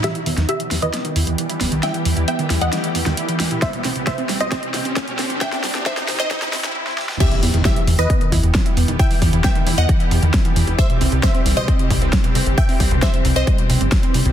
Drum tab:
CC |----------------|----------------|----------------|----------------|
HH |xxoxxxoxxxoxxxox|xxoxxxoxxxoxxxox|xxoxxxoxxxoxxxox|xxoxxxoxxxox----|
SD |o--o--o-o-----o-|o-----o-o--o--o-|o-o-o-o-o-o-o-o-|oooooooooooo-ooo|
BD |----------------|----------------|o---o---o---o---|o---o---o-------|

CC |x---------------|----------------|----------------|----------------|
HH |xxoxxxoxxxoxxxox|xooxxxoxxxoxxxox|xxoxxxo-xxoxxxox|xooxxxoxxxoxxxox|
SD |----o-------o---|----o-------o---|----o-------o---|----o-------o---|
BD |o---o---o-o-o---|o-o-o---o---o---|o---o---o-o-o---|o-o-o---o---o---|